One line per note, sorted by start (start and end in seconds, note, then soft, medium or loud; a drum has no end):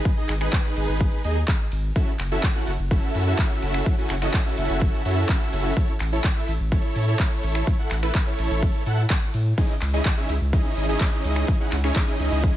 0.00 0.14 D#4 medium
0.00 0.14 G#4 medium
0.00 0.14 B4 medium
0.05 kick loud
0.05 ride medium
0.17 0.33 D#4 medium
0.17 0.33 G#4 medium
0.17 0.33 D#5 loud
0.29 0.48 G#1 loud
0.29 finger snap medium
0.29 clap soft
0.29 open hi-hat loud
0.29 ride medium
0.41 0.62 D#4 medium
0.41 0.62 G#4 medium
0.41 0.62 B4 medium
0.41 finger snap medium
0.53 kick loud
0.53 clap loud
0.53 ride medium
0.65 1.22 D#4 medium
0.65 1.22 G#4 medium
0.65 1.22 B4 loud
0.77 0.86 G#1 medium
0.77 open hi-hat loud
0.77 ride medium
0.89 1.08 G#1 loud
1.00 kick loud
1.00 ride medium
1.24 1.44 D#2 loud
1.24 1.41 D#4 medium
1.24 1.41 G#4 medium
1.24 1.41 D#5 medium
1.24 open hi-hat loud
1.24 ride medium
1.48 kick loud
1.48 clap loud
1.48 ride medium
1.72 1.91 G#1 loud
1.72 open hi-hat loud
1.72 ride medium
1.96 2.12 C#4 loud
1.96 2.12 E4 medium
1.96 2.12 F#4 medium
1.96 2.12 A4 medium
1.96 2.12 E5 loud
1.96 kick loud
1.96 ride medium
2.20 2.39 F#1 loud
2.20 finger snap medium
2.20 clap soft
2.20 open hi-hat loud
2.20 ride medium
2.32 2.48 C#4 medium
2.32 2.48 E4 medium
2.32 2.48 F#4 medium
2.32 2.48 A4 medium
2.32 2.48 E5 medium
2.43 kick loud
2.43 clap loud
2.43 ride medium
2.55 2.72 C#4 medium
2.55 2.72 E4 medium
2.55 2.72 F#4 medium
2.55 2.72 A4 medium
2.55 2.72 F#5 loud
2.67 2.77 F#1 medium
2.67 open hi-hat loud
2.67 ride medium
2.79 2.98 F#1 loud
2.91 3.24 C#4 loud
2.91 3.24 E4 medium
2.91 3.24 F#4 medium
2.91 3.24 A4 medium
2.91 3.24 E5 loud
2.91 kick loud
2.91 ride medium
3.15 3.34 F#2 medium
3.15 open hi-hat loud
3.15 ride medium
3.27 3.95 C#4 medium
3.27 3.95 E4 medium
3.27 3.95 F#4 medium
3.27 3.95 A4 medium
3.27 3.95 E5 medium
3.39 kick loud
3.39 clap loud
3.39 ride medium
3.62 3.82 F#1 loud
3.62 open hi-hat loud
3.62 ride medium
3.74 finger snap medium
3.86 kick loud
3.86 ride medium
3.98 4.14 C#4 medium
3.98 4.14 E4 medium
3.98 4.14 F#4 medium
3.98 4.14 A4 medium
3.98 4.14 G#5 loud
4.10 4.29 F#1 loud
4.10 finger snap medium
4.10 clap soft
4.10 open hi-hat loud
4.10 ride medium
4.22 4.43 C#4 medium
4.22 4.43 E4 medium
4.22 4.43 F#4 medium
4.22 4.43 A4 medium
4.22 4.43 D#5 medium
4.22 finger snap medium
4.34 kick loud
4.34 clap loud
4.34 ride medium
4.46 5.03 C#4 medium
4.46 5.02 E4 medium
4.46 5.02 F#4 medium
4.46 5.02 A4 medium
4.46 5.02 E5 loud
4.58 4.67 F#1 medium
4.58 open hi-hat loud
4.58 ride medium
4.70 4.89 F#1 loud
4.82 kick loud
4.82 ride medium
5.05 5.25 F#2 loud
5.05 5.74 C#4 medium
5.05 5.74 E4 medium
5.05 5.74 F#4 medium
5.05 5.74 A4 medium
5.05 5.74 E5 loud
5.05 open hi-hat loud
5.05 ride medium
5.29 kick loud
5.29 clap loud
5.29 ride medium
5.53 5.72 F#1 loud
5.53 open hi-hat loud
5.53 ride medium
5.77 kick loud
5.77 ride medium
6.00 6.20 A1 loud
6.00 finger snap medium
6.00 clap soft
6.00 open hi-hat loud
6.00 ride medium
6.12 6.29 E4 medium
6.12 6.29 A4 medium
6.12 6.29 C#5 medium
6.24 kick loud
6.24 clap loud
6.24 ride medium
6.36 6.52 E4 medium
6.36 6.52 A4 medium
6.36 6.52 E5 loud
6.48 6.58 A1 medium
6.48 open hi-hat loud
6.48 ride medium
6.60 6.79 A1 medium
6.72 7.05 E4 loud
6.72 7.05 A4 medium
6.72 7.05 C#5 loud
6.72 kick loud
6.72 ride medium
6.96 7.15 A2 loud
6.96 open hi-hat loud
6.96 ride medium
7.08 7.76 E4 medium
7.08 7.76 A4 medium
7.08 7.76 C#5 medium
7.19 kick loud
7.19 clap loud
7.19 ride medium
7.43 7.63 A1 loud
7.43 open hi-hat loud
7.43 ride medium
7.55 finger snap medium
7.67 kick loud
7.67 ride medium
7.79 7.95 E4 medium
7.79 7.95 A4 medium
7.79 7.95 F#5 loud
7.91 8.10 A1 loud
7.91 finger snap medium
7.91 clap soft
7.91 open hi-hat loud
7.91 ride medium
8.03 8.24 E4 medium
8.03 8.24 A4 medium
8.03 8.24 B4 medium
8.03 finger snap medium
8.15 kick loud
8.15 clap loud
8.15 ride medium
8.27 8.83 E4 medium
8.27 8.83 A4 medium
8.27 8.83 C#5 loud
8.39 8.48 A1 medium
8.39 open hi-hat loud
8.39 ride medium
8.51 8.70 A1 loud
8.62 kick loud
8.62 ride medium
8.86 9.06 A2 loud
8.86 9.02 E4 medium
8.86 9.02 A4 medium
8.86 9.02 F#5 medium
8.86 open hi-hat loud
8.86 ride medium
9.10 kick loud
9.10 clap loud
9.10 ride medium
9.34 9.53 A2 loud
9.34 open hi-hat loud
9.34 ride medium
9.58 9.74 C#4 loud
9.58 9.74 D#4 medium
9.58 9.74 E4 medium
9.58 9.74 G#4 medium
9.58 9.74 D#5 loud
9.58 kick loud
9.58 crash medium
9.58 ride medium
9.82 10.01 C#2 loud
9.82 finger snap medium
9.82 clap soft
9.82 open hi-hat loud
9.82 ride medium
9.94 10.10 C#4 medium
9.94 10.10 D#4 medium
9.94 10.10 E4 medium
9.94 10.10 G#4 medium
9.94 10.10 D#5 medium
10.05 kick loud
10.05 clap loud
10.05 ride medium
10.17 10.33 C#4 medium
10.17 10.33 D#4 medium
10.17 10.34 E4 medium
10.17 10.33 G#4 medium
10.17 10.33 E5 loud
10.29 10.39 C#2 medium
10.29 open hi-hat loud
10.29 ride medium
10.41 10.60 C#2 loud
10.53 10.86 C#4 loud
10.53 10.86 D#4 medium
10.53 10.86 E4 medium
10.53 10.86 G#4 medium
10.53 10.86 D#5 loud
10.53 kick loud
10.53 ride medium
10.77 10.96 G#1 medium
10.77 open hi-hat loud
10.77 ride medium
10.89 11.57 C#4 medium
10.89 11.57 D#4 medium
10.89 11.57 E4 medium
10.89 11.57 G#4 medium
10.89 11.57 D#5 medium
11.01 kick loud
11.01 clap loud
11.01 ride medium
11.24 11.44 C#2 loud
11.24 open hi-hat loud
11.24 ride medium
11.36 finger snap medium
11.48 kick loud
11.48 ride medium
11.60 11.76 C#4 medium
11.60 11.76 D#4 medium
11.60 11.76 E4 medium
11.60 11.76 G#4 medium
11.60 11.76 F#5 loud
11.72 11.91 C#2 loud
11.72 finger snap medium
11.72 clap soft
11.72 open hi-hat loud
11.72 ride medium
11.84 12.05 C#4 medium
11.84 12.05 D#4 medium
11.84 12.05 E4 medium
11.84 12.05 G#4 medium
11.84 12.05 C#5 medium
11.84 finger snap medium
11.96 kick loud
11.96 clap loud
11.96 ride medium
12.08 12.57 C#4 medium
12.08 12.57 D#4 medium
12.08 12.57 E4 medium
12.08 12.57 G#4 medium
12.08 12.57 D#5 loud
12.20 12.29 C#2 medium
12.20 open hi-hat loud
12.20 ride medium
12.32 12.51 C#2 medium
12.43 kick loud
12.43 ride medium